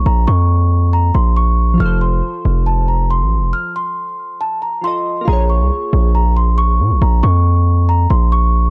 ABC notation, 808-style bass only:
X:1
M:4/4
L:1/16
Q:1/4=138
K:Bbm
V:1 name="808-style bass" clef=bass
B,,,2 F,,8 B,,,6 | F,,,4 z2 F,,,6- F,,, =A,,,3/2 F,,,3/2 | z16 | B,,,3 C,, z2 B,,,8 B,, B,,, |
B,,,2 F,,8 B,,,6 |]